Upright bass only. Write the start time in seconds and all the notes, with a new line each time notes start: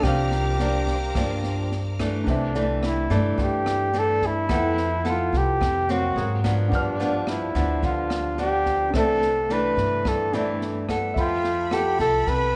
0.03 C2
1.15 G2
2.27 C2
3.10 G2
3.38 G2
4.49 F2
5.33 C2
5.60 F2
6.16 G#2
6.72 G2
7.55 D2
7.83 D2
8.94 C2
9.77 G2
10.05 G2
11.16 F2
11.99 C2
12.27 C2